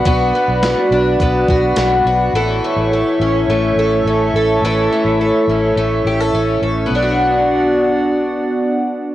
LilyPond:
<<
  \new Staff \with { instrumentName = "Analog synth pad" } { \time 4/4 \key b \minor \tempo 4 = 105 <fis' b' d'' b''>1 | <a' cis'' e'' cis'''>1~ | <a' cis'' e'' cis'''>1 | <b d' fis' d'' fis''>1 | }
  \new Staff \with { instrumentName = "Twelve-string acoustic guitar" } { \time 4/4 \key b \minor <b d' fis'>8 b8 fis'8 d'8 b8 fis'8 d'8 fis'8 | <e a'>8 a8 a'8 cis'8 a8 a'8 cis'8 a'8 | <e a'>8 a8 a'8 cis'8 a8 g'16 a'16 cis'8 a'8 | <b d' fis'>1 | }
  \new Staff \with { instrumentName = "Fingered electric bass" } { \clef bass \time 4/4 \key b \minor b,,8 r16 b,,8 r16 b,,8 b,,8 b,,8 b,,8 b,,8 | a,,8 r16 a,,8 r16 a,,8 a,,8 a,,8 a,,8 a,,8 | a,,8 r16 a,,8 r16 a,,8 a,,8 a,,8 a,,8 a,,8 | b,,1 | }
  \new DrumStaff \with { instrumentName = "Drums" } \drummode { \time 4/4 <hh bd>4 <hh sn>4 <hh bd>8 bd8 <hh sn>4 | r4 r4 r4 r4 | r4 r4 r4 r4 | r4 r4 r4 r4 | }
>>